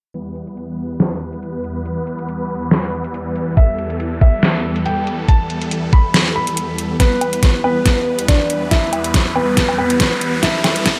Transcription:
0.14 E2 E3 G3 B3 B4, closed hi-hat
0.36 closed hi-hat
0.47 closed hi-hat
0.57 closed hi-hat
1.00 snare, closed hi-hat
1.33 closed hi-hat
1.43 closed hi-hat
1.64 closed hi-hat
1.86 closed hi-hat
2.07 closed hi-hat
2.19 closed hi-hat
2.29 closed hi-hat
2.71 snare, closed hi-hat
3.04 closed hi-hat
3.14 closed hi-hat
3.36 closed hi-hat
3.57 A4 E5, kick, closed hi-hat
3.79 closed hi-hat
3.90 closed hi-hat
4.00 closed hi-hat
4.21 E5, kick
4.43 snare, closed hi-hat
4.76 closed hi-hat
4.86 G5, closed hi-hat
5.07 closed hi-hat
5.29 A5, kick, closed hi-hat
5.50 closed hi-hat
5.62 closed hi-hat
5.71 closed hi-hat
5.93 B5, kick
6.14 snare, closed hi-hat
6.36 B5
6.47 closed hi-hat
6.57 closed hi-hat
6.78 closed hi-hat
7.00 E3 G3 B3 B4, kick, snare, closed hi-hat, riser
7.21 closed hi-hat, low woodblock
7.33 closed hi-hat
7.43 kick, snare, closed hi-hat
7.64 B3 B4, low woodblock
7.86 kick, snare, closed hi-hat
8.19 closed hi-hat
8.28 D4 D5, kick, snare, closed hi-hat
8.50 closed hi-hat
8.71 E4 E5, kick, snare, closed hi-hat
8.93 closed hi-hat, low woodblock
9.04 closed hi-hat
9.14 kick, snare, closed hi-hat
9.36 B3 B4, low woodblock
9.57 kick, snare, closed hi-hat
9.69 low woodblock
9.78 B3 B4, low woodblock
9.90 closed hi-hat
10.00 kick, snare, closed hi-hat
10.21 closed hi-hat
10.43 E4 E5, kick, snare, closed hi-hat
10.64 snare, closed hi-hat, low woodblock
10.76 closed hi-hat
10.86 kick, snare, closed hi-hat

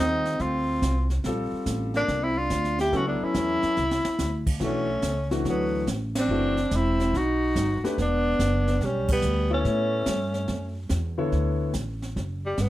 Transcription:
Already playing: D#2 G3 C4 F4 A4
0.00 D#4
0.25 snare
0.39 D2 C4 F4, brush sweep, kick, snare
0.82 C2, kick, snare, hi-hat pedal
1.10 snare
1.24 A#1 G3 C4 F4 A4, brush sweep, kick, snare
1.52 muted upright bass stroke
1.66 A1, kick, snare, hi-hat pedal
1.94 A#3 D4, snare
2.08 C2, brush sweep, kick, snare
2.22 C4 E4
2.38 D4 F4
2.50 D2, kick, snare, hi-hat pedal
2.64 snare
2.79 E4 G4, snare
2.92 C#2 F#3 B3 C#4 E4 F#4 A4, brush sweep, kick, snare
3.07 B3 D4
3.21 C#4 E4, muted upright bass stroke
3.34 E2, kick, snare, hi-hat pedal
3.62 muted upright bass stroke, snare
3.77 C2, snare
3.91 snare
4.05 muted upright bass stroke, snare
4.18 D2, snare, hi-hat pedal
4.47 kick, crash
4.60 B1 E3 A3 D4 F#4, brush sweep, kick, snare
4.65 C#4
5.02 C#2, kick, snare, hi-hat pedal
5.31 E3 A3 D4 F#4, snare
5.45 D2 F#3, brush sweep, kick, snare
5.49 B3
5.87 A1, kick, snare, hi-hat pedal
6.15 C4, snare, ride
6.20 D4
6.28 F#1 E3 A3 D4 F#4, brush sweep
6.57 snare
6.71 E1 C4, kick, snare, hi-hat pedal
6.76 E4
7.00 snare
7.14 B1 D#4 F#4, brush sweep, kick, snare
7.56 G1, kick, snare, hi-hat pedal
7.83 A3 D4 G4 B4, muted upright bass stroke, snare
7.98 E1 B3, brush sweep, kick, snare
8.02 D4
8.39 F#1, kick, snare, hi-hat pedal
8.68 snare
8.81 B1 G3, brush sweep, kick, snare
8.85 C#4
9.08 G3 B3, kick, crash
9.22 D2, hi-hat pedal
9.51 A3 B3 C#4 E4 A4 C#5
9.64 A2, brush sweep, kick, snare
10.06 G2, kick, snare, hi-hat pedal
10.34 snare
10.48 F#2, brush sweep, kick, snare
10.89 E2, kick, snare, hi-hat pedal
11.18 D3 B3 E4 A4 C#5
11.32 D2, brush sweep, kick, snare
11.73 A1, kick, snare, hi-hat pedal
12.02 snare
12.16 F#1, brush sweep, kick, snare
12.46 G3
12.58 G1 B3, kick, snare, hi-hat pedal

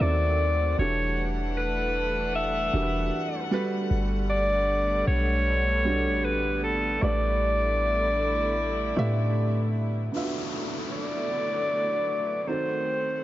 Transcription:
Already playing: F#3
0.00 D#2 D#3 A3 C4 F#4 A4 D5 F#5
0.78 E1 E3 G3 A3 D4 F#4 G4 A4 C#5
1.57 B4
2.35 E5
2.73 E1 E3 D4 F#4 G4 A#4
2.82 B4
3.51 D3 G3 A3 B3 F#4 A4 B4
3.91 G1
4.30 D5
5.07 B1 C#5
5.85 G3 D4 F#4 A4
6.08 A1
6.25 B4
6.64 A4
7.01 A1 D3 A3 E4 G4 B4 D5
8.96 A2 A3 G4 B4 E5
10.12 D3 F#3 A3 B3 E4 F4, downlifter
10.17 E5
10.22 F#4
10.92 D5
12.42 D5
12.47 D#3 A3 C4 F#4 A4 C5 F#5

